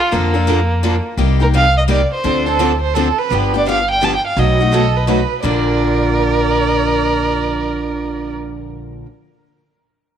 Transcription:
0.00 0.13 F4 medium
0.12 0.98 F2 medium
0.12 0.33 D3 medium
0.12 0.34 F3 medium
0.12 1.05 A#3 medium
0.12 0.34 A#3 medium
0.12 0.34 D4 medium
0.12 0.33 A4 medium
0.34 0.46 A#3 soft
0.34 0.46 D4 medium
0.34 0.47 A4 medium
0.47 0.59 D3 medium
0.47 0.59 F3 medium
0.47 0.59 A#3 medium
0.47 0.59 D4 medium
0.47 0.59 A4 medium
0.83 0.94 D3 medium
0.83 0.95 F3 medium
0.83 0.95 A#3 medium
0.83 0.95 D4 medium
0.83 0.95 A4 medium
1.17 2.03 C2 medium
1.17 1.39 C3 medium
1.17 1.40 G3 medium
1.17 1.40 A#3 medium
1.17 1.39 D#4 medium
1.17 1.39 G4 medium
1.40 1.53 A#3 soft
1.40 1.53 D#4 medium
1.40 1.53 G4 medium
1.40 1.48 A#4 medium
1.54 1.65 C3 medium
1.54 1.66 G3 medium
1.54 1.65 A#3 medium
1.54 1.65 D#4 medium
1.54 1.66 G4 medium
1.54 1.76 F5 loud
1.78 1.83 D#5 medium
1.88 2.00 C3 medium
1.88 2.00 G3 medium
1.88 2.00 A#3 medium
1.88 2.00 D#4 medium
1.88 2.01 G4 medium
1.88 2.11 D5 medium
2.14 2.58 C5 medium
2.24 3.09 D2 medium
2.24 2.46 D3 medium
2.24 2.46 F3 medium
2.24 2.46 C4 medium
2.24 2.46 D4 medium
2.24 2.45 A4 medium
2.46 2.59 C4 soft
2.46 2.59 D4 soft
2.46 2.59 A4 medium
2.46 2.80 A4 medium
2.59 2.71 D3 medium
2.59 2.71 F3 medium
2.59 2.71 C4 medium
2.59 2.71 D4 medium
2.59 2.71 A4 medium
2.81 2.96 C5 medium
2.94 3.07 D3 medium
2.94 3.07 F3 medium
2.94 3.07 C4 medium
2.94 3.07 D4 medium
2.94 3.20 A4 medium
2.94 3.07 A4 medium
3.18 3.42 B4 medium
3.31 4.16 G1 medium
3.31 3.53 D3 medium
3.31 3.53 F3 medium
3.31 3.53 B3 medium
3.31 3.53 D4 medium
3.31 3.53 G4 medium
3.54 3.67 B3 soft
3.54 3.67 D4 soft
3.54 3.66 G4 medium
3.54 3.68 D5 medium
3.68 3.79 D3 medium
3.68 3.79 F3 medium
3.68 3.79 B3 medium
3.68 3.79 D4 medium
3.68 3.79 G4 medium
3.68 3.89 F5 medium
3.91 4.06 G5 medium
4.02 4.13 D3 medium
4.02 4.13 F3 medium
4.02 4.13 B3 medium
4.02 4.14 D4 medium
4.02 4.14 G4 medium
4.02 4.15 A5 medium
4.15 4.26 G5 medium
4.27 4.41 F5 medium
4.37 5.22 B1 medium
4.37 4.59 B2 medium
4.37 4.59 F#3 medium
4.37 4.59 A3 medium
4.37 4.59 D#4 medium
4.37 4.59 F#4 medium
4.37 4.59 B4 medium
4.37 5.09 D#5 medium
4.60 4.73 A3 soft
4.60 4.72 D#4 soft
4.60 4.73 F#4 medium
4.73 4.84 B2 medium
4.73 4.84 F#3 medium
4.73 4.84 A3 medium
4.73 4.84 D#4 medium
4.73 4.85 F#4 medium
4.73 4.98 A4 medium
4.73 4.84 B4 medium
4.96 5.09 B4 medium
5.07 5.19 B2 medium
5.07 5.19 F#3 medium
5.07 5.19 A3 medium
5.07 5.19 D#4 medium
5.07 5.19 F#4 medium
5.07 5.19 B4 medium
5.07 5.41 B4 medium
5.43 9.02 A#1 medium
5.43 9.05 A#2 medium
5.43 9.06 D3 medium
5.43 9.06 F3 medium
5.43 9.06 A#3 medium
5.43 9.06 D4 medium
5.43 8.33 A#4 medium
5.43 8.32 D5 medium

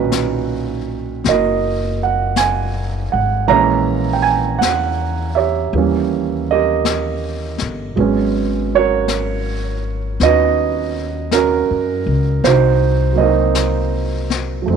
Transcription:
0.00 1.21 B1 medium
0.00 3.49 A#2 soft
0.00 3.48 D#3 soft
0.00 3.48 F#3 soft
0.00 3.50 C#4 soft
0.00 1.98 D#4 soft
0.00 3.51 E4 soft
0.00 1.27 F#4 medium
0.00 0.84 B4 medium
0.12 brush sweep soft
0.12 snare soft
0.12 hi-hat pedal soft
1.24 3.09 F#1 medium
1.24 brush sweep soft
1.24 snare soft
1.29 3.47 F#4 soft
1.29 3.48 A#4 soft
1.29 2.04 D#5 medium
2.03 2.39 F#5 medium
2.36 3.08 G#5 medium
2.36 brush sweep soft
2.36 snare soft
2.36 hi-hat pedal soft
3.12 3.47 G#1 medium
3.12 3.46 F#5 medium
3.48 4.57 A#1 medium
3.48 5.72 E3 medium
3.48 5.73 G#3 soft
3.48 5.74 A#3 soft
3.48 5.35 C#5 medium
3.48 5.34 E5 medium
3.48 4.11 A#5 medium
3.48 brush sweep soft
3.52 5.75 C#4 medium
4.13 4.24 G5 soft
4.22 4.61 G#5 medium
4.59 5.69 E2 medium
4.59 5.37 F#5 medium
4.59 brush sweep soft
4.59 snare soft
4.59 hi-hat pedal soft
5.35 6.51 G4 soft
5.35 7.55 C#5 soft
5.35 6.51 E5 medium
5.73 7.55 D#2 medium
5.73 7.97 E3 soft
5.73 7.97 G3 soft
5.73 7.97 A#3 soft
5.73 brush sweep soft
5.77 7.98 C#4 soft
6.51 7.94 G4 soft
6.51 7.94 A#4 soft
6.51 7.57 D#5 medium
6.85 brush sweep soft
6.85 snare soft
6.85 hi-hat pedal soft
7.58 7.94 G1 soft
7.58 snare soft
7.96 10.16 G#1 medium
7.96 12.43 F#3 soft
7.96 12.44 G#3 soft
7.96 10.20 B3 soft
7.96 brush sweep soft
8.00 10.22 C#4 medium
8.75 10.22 F#4 soft
8.75 10.93 A#4 soft
8.75 10.26 C#5 medium
9.08 brush sweep soft
9.08 snare soft
9.08 hi-hat pedal soft
10.20 11.65 D#2 medium
10.20 12.44 B3 soft
10.20 11.33 C#4 soft
10.20 11.36 D#5 medium
10.20 brush sweep soft
10.20 snare soft
10.24 12.46 D#4 soft
10.24 11.33 F#4 medium
10.24 12.42 B4 medium
11.31 12.41 C#4 soft
11.31 12.41 F#4 soft
11.31 12.47 A#4 medium
11.31 brush sweep soft
11.31 snare soft
11.31 hi-hat pedal soft
11.71 12.04 F#2 soft
12.06 12.41 C#2 medium
12.44 14.64 C2 medium
12.44 13.21 D#4 medium
12.44 13.19 F#4 medium
12.44 13.21 C5 medium
12.44 brush sweep soft
12.44 snare soft
13.13 14.61 F#3 soft
13.13 14.66 A#3 soft
13.18 14.68 C4 soft
13.18 14.65 F#4 soft
13.18 14.65 A#4 soft
13.18 14.26 D#5 medium
13.23 14.70 D#4 soft
13.55 brush sweep soft
13.55 snare soft
13.55 hi-hat pedal soft
14.30 snare soft
14.62 14.77 F#3 soft
14.62 14.77 A3 soft
14.68 14.77 F2 medium
14.68 14.77 C4 soft
14.68 brush sweep soft
14.73 14.77 D#4 soft

